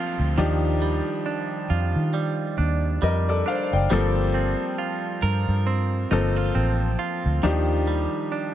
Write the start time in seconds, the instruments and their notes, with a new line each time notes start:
Already playing: grand piano F3 A#3 C4 A4, clean electric guitar G3 C4 F4 A#4, downlifter
0.19 fingered electric bass D2
0.38 fingered electric bass D#2, clean electric guitar D#3, grand piano F3 D4 D#4 G4
0.82 clean electric guitar G3
1.26 clean electric guitar D4
1.70 fingered electric bass F2, clean electric guitar F4
1.96 fingered electric bass D#3
2.14 clean electric guitar G3
2.58 fingered electric bass D#2, clean electric guitar D4
3.02 fingered electric bass F2, clean electric guitar G3, grand piano A#4 D#5
3.29 grand piano A4 D5
3.46 clean electric guitar D4, grand piano C5 F5
3.73 fingered electric bass F#1, grand piano D5 G5
3.90 fingered electric bass G1, grand piano F3 A#3 C4 A4, clean electric guitar G3
4.34 clean electric guitar C4
4.78 clean electric guitar F4
5.22 fingered electric bass G2, clean electric guitar A#4
5.48 fingered electric bass G2
5.67 clean electric guitar C4
6.11 fingered electric bass G1, grand piano F3 A#3 C4 A4, clean electric guitar D#4
6.36 clean electric guitar F4
6.55 fingered electric bass A1, clean electric guitar C4
6.99 clean electric guitar F4
7.25 fingered electric bass D2
7.43 fingered electric bass D#2, clean electric guitar D#3, grand piano F3 D4 D#4 G4
7.87 clean electric guitar G3
8.32 clean electric guitar D4